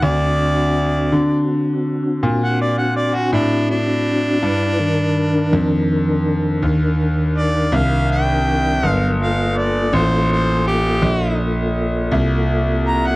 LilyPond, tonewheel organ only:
\new Staff \with { instrumentName = "Tonewheel organ" } { \time 12/8 \key g \minor \tempo 4. = 55 <c' d' fis'>1. | <d' e' b'>8 <ees d' bes'>1~ <ees d' bes'>4. | <fis b bes'>8 <bes f' a'>1~ <bes f' a'>4. | }